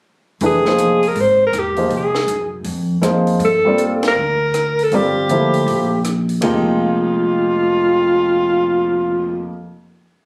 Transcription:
0.40 upright bass F1, grand piano E3 A3 D4 G4 B4, open hi-hat
0.46 alto saxophone G#4
0.65 grand piano F3 A#3 D#4 G#4 C5, snare
0.78 closed hi-hat
1.03 open hi-hat
1.08 alto saxophone A#4
1.15 upright bass G#1, open hi-hat
1.21 alto saxophone C5
1.47 alto saxophone A#4
1.52 upright bass E1, cross-stick, closed hi-hat
1.59 alto saxophone G4
1.76 grand piano F3 A#3 D#4 G#4 C5, open hi-hat
1.89 upright bass C2, open hi-hat
1.97 alto saxophone G#4
2.15 snare
2.27 upright bass F#2, closed hi-hat
2.64 upright bass F2, open hi-hat
3.02 upright bass F2, grand piano F3 A#3 D#4 G#4 C5, cross-stick, closed hi-hat
3.27 open hi-hat
3.39 upright bass G2, open hi-hat
3.45 alto saxophone A4
3.65 grand piano G3 A#3 C4 F4 D5
3.78 closed hi-hat
4.03 snare, ride
4.08 alto saxophone A#4
4.15 upright bass D2
4.54 cross-stick, closed hi-hat
4.79 open hi-hat
4.84 alto saxophone A4
4.91 upright bass G1, grand piano G3 C4 F4 A#4 D5, open hi-hat
4.96 alto saxophone G4
5.28 upright bass D2, grand piano F3 A#3 E4 A4 C5, closed hi-hat
5.54 open hi-hat
5.66 upright bass A#1, open hi-hat
6.04 cross-stick, closed hi-hat
6.29 open hi-hat
6.41 upright bass F1, grand piano F2 F3 G#3 A#3 D#4 G4, alto saxophone F4, kick, ride bell

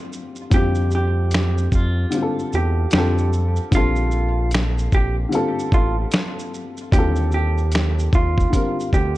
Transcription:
Already playing: upright piano D3 G3 C4 F4 G4
0.13 shaker
0.36 shaker
0.50 analog synth bass F2, upright piano D3 G3 C4, hollow-body jazz guitar G4, kick, closed hi-hat, shaker
0.54 upright piano F4 G4
0.75 shaker
0.91 hollow-body jazz guitar G4, shaker
1.31 finger snap, snare, closed hi-hat, shaker
1.58 shaker
1.72 analog synth bass F2, hollow-body jazz guitar F4, kick, shaker
2.10 upright piano D3 G3 C4, closed hi-hat, shaker
2.14 upright piano F4 G4
2.22 upright piano A4
2.39 shaker
2.53 analog synth bass E2, hollow-body jazz guitar G4, shaker
2.91 analog synth bass F2, upright piano D3 G3, hollow-body jazz guitar G4, finger snap, snare, closed hi-hat, shaker
2.95 upright piano C4 F4 A4
3.18 shaker
3.33 shaker
3.56 shaker
3.71 analog synth bass A#1, upright piano D3 G3 C4, kick, closed hi-hat, shaker
3.75 hollow-body jazz guitar F4, upright piano F4 A4
3.96 shaker
4.11 shaker
4.51 finger snap, snare, closed hi-hat, shaker
4.78 shaker
4.92 analog synth bass A#1, hollow-body jazz guitar G4, kick, shaker
5.29 upright piano D3 G3 C4, closed hi-hat, shaker
5.33 upright piano F4 A4
5.59 shaker
5.72 analog synth bass A1, hollow-body jazz guitar F4, kick, shaker
6.12 finger snap, snare, closed hi-hat, shaker
6.39 shaker
6.54 shaker
6.77 shaker
6.92 analog synth bass D#2, upright piano D3 F#3 C4, hollow-body jazz guitar G4, kick, closed hi-hat, shaker
6.97 upright piano G3 F4 A4
7.16 shaker
7.32 hollow-body jazz guitar G4, shaker
7.58 shaker
7.72 finger snap, snare, closed hi-hat, shaker
7.99 shaker
8.13 analog synth bass D#2, hollow-body jazz guitar F4, kick, shaker
8.38 kick, shaker
8.50 upright piano D3 G3 C4, kick, closed hi-hat, shaker
8.54 upright piano F4 A#4
8.80 shaker
8.93 analog synth bass D2, hollow-body jazz guitar G4, kick, shaker

